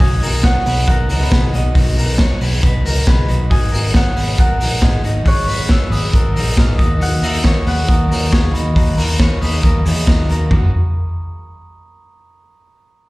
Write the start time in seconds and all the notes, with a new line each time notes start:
Already playing: C#5 C#6
0.00 B1 B2 D#3 F#3 B3 D#4 F#4 G#5 D#6, kick, hi-hat pedal, open hi-hat
0.20 B1 F#3 B3 D#4 F#4 A#4, hi-hat pedal, open hi-hat
0.42 D#3 F#3 B3 D#4 F#4 C#5 F#5, kick, snare, hi-hat pedal, open hi-hat
0.66 B1 F#3 B3 D#4 G#4 B4, hi-hat pedal, open hi-hat
0.86 B1 B2 D#3 F#3 B3 D#4 F#4 A#4 F#5, kick, hi-hat pedal, open hi-hat
1.09 C#2 F#3 B3 D#4 F#4 A#4, hi-hat pedal, open hi-hat
1.21 B4
1.31 B1 D#3 F#3 B3 D#4 G#4, kick, snare, hi-hat pedal, open hi-hat
1.53 B1 F#3 B3 D#4 F#4 D#5, hi-hat pedal, open hi-hat
1.74 B1 B2 D#3 F#3 B3 D#4 F#4, kick, hi-hat pedal, open hi-hat
1.96 B1 F#3 B3 D#4 F#4 A#4, hi-hat pedal, open hi-hat
2.18 D#3 F#3 B3 D#4 F#4 C#5, kick, snare, hi-hat pedal, open hi-hat
2.39 B1 F#3 B3 D#4 G#4 B4, hi-hat pedal, open hi-hat
2.61 B1 B2 D#3 F#3 B3 D#4 F#4 B4, kick, hi-hat pedal, open hi-hat
2.84 C#2 F#3 B3 D#4 F#4 A#4, hi-hat pedal, open hi-hat
3.06 B1 D#3 F#3 B3 D#4 G#4 B4, kick, snare, open hi-hat
3.28 B1 F#3 B3 D#4 F#4, hi-hat pedal, open hi-hat
3.50 G#1 G#2 B2 D#3 F#3 G#3 B3 D#4 F#4 G#5 D#6, kick, hi-hat pedal, open hi-hat
3.72 G#1 F#3 B3 D#4 F#4 A#4, hi-hat pedal, open hi-hat
3.94 D#3 F#3 B3 D#4 G#4 C#5 F#5, kick, snare, hi-hat pedal, open hi-hat
4.16 G#1 F#3 B3 D#4 G#4 B4, hi-hat pedal, open hi-hat
4.38 G#1 G#2 D#3 F#3 B3 D#4 F#4 A#4 F#5, kick, hi-hat pedal, open hi-hat
4.60 A#1 F#3 B3 D#4 F#4 A#4, hi-hat pedal, open hi-hat
4.81 G#1 D#3 F#3 B3 D#4 G#4 D#5, kick, snare, hi-hat pedal, open hi-hat
5.03 G#1 F#3 B3 D#4 F#4, hi-hat pedal, open hi-hat
5.25 G#1 G#2 D#3 F#3 B3 D#4 G#4 C#5 F#6, kick, hi-hat pedal, open hi-hat
5.47 G#1 F#3 B3 D#4 G#4 B4, hi-hat pedal, open hi-hat
5.68 D#3 F#3 B3 D#4 G#4 C#5 E6, kick, snare, hi-hat pedal, open hi-hat
5.90 G#1 F#3 B3 D#4 G#4 B4 D#6, hi-hat pedal, open hi-hat
6.10 G#1 G#2 D#3 F#3 B3 D#4 F#4 A#4, kick, hi-hat pedal, open hi-hat
6.33 A#1 F#3 B3 D#4 F#4 A#4, hi-hat pedal, open hi-hat
6.56 G#1 D#3 F#3 B3 D#4 G#4 A#4, kick, snare, hi-hat pedal, open hi-hat
6.77 D#2 D#3 F#3 A#3 D#4 F#4 D#6, kick, hi-hat pedal, open hi-hat
6.98 D#3 F#3 A#3 D#4 F#4, hi-hat pedal, open hi-hat
7.02 F#5
7.20 D#2 F#3 A#3 D#4 F#4 A#4 E5, hi-hat pedal, open hi-hat
7.42 D#3 F#3 A#3 D#4 A#4 C#5 C#6, kick, snare, hi-hat pedal, open hi-hat
7.63 D#2 F#3 A#3 D#4 G#4 B4, hi-hat pedal, open hi-hat
7.68 F#5
7.86 D#2 D#3 F#3 A#3 D#4 F#4 A#4 D#6, kick, hi-hat pedal, open hi-hat
8.09 D#2 F#3 A#3 D#4 F#4 A#4, hi-hat pedal, open hi-hat
8.31 D#2 D#3 F#3 A#3 D#4 G#4 C#6, kick, snare, hi-hat pedal, open hi-hat
8.54 D#2 F#3 A#3 D#4 F#4 B5, hi-hat pedal, open hi-hat
8.75 D#2 D#3 F#3 A#3 D#4 F#4 A#5, kick, hi-hat pedal, open hi-hat
8.97 D#2 F#3 A#3 D#4 F#4 A#4 A#5, hi-hat pedal, open hi-hat
9.19 D#3 F#3 A#3 D#4 A#4 C#5 C#6, kick, snare, open hi-hat
9.41 D#2 F#3 A#3 D#4 G#4 B4 D#6, hi-hat pedal, open hi-hat
9.63 D#2 D#3 F#3 A#3 D#4 F#4 A#4 D#6, kick, hi-hat pedal, open hi-hat
9.84 E2 A#3 D#4 E4 G#4, hi-hat pedal, open hi-hat
9.89 F#3
10.07 D#2 D#3 F#3 A#3 D#4 F#4 A#5, kick, snare, hi-hat pedal, open hi-hat
10.28 D#2 A#3 D#4 F#4 A#4, hi-hat pedal, open hi-hat
10.32 F#3
10.49 F#1 F#3 G#3 A#3 C#4 F#4 G#4 A#5, kick, floor tom
10.54 F#4 A#4